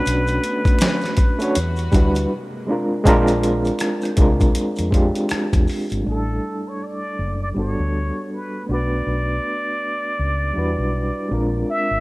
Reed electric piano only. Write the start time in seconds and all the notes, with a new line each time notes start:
Already playing: A3 C#4 D4 F#4 B4
1.39 A3 C#4 D4 F#4
1.44 C#5
1.92 G3 D4 E4 F#4
1.97 B4
2.67 G#3 C4 D4 F4
2.72 A#4
3.04 G#3 C4 D4 F4
3.09 A#4
4.16 G#3 C4 D4 F4
4.21 A#4
4.91 G#3 C4 D4 F4
4.96 G4
6.01 G3 A3
6.06 D4 E4
6.11 A4
7.54 G3 B3 D4 F#4
7.59 A4
8.64 A3 B3
8.69 D4 F#4
8.74 B4
10.53 G3 D4 E4 F#4
10.59 B4
11.29 G#3 C4 D4 F4
11.34 A#4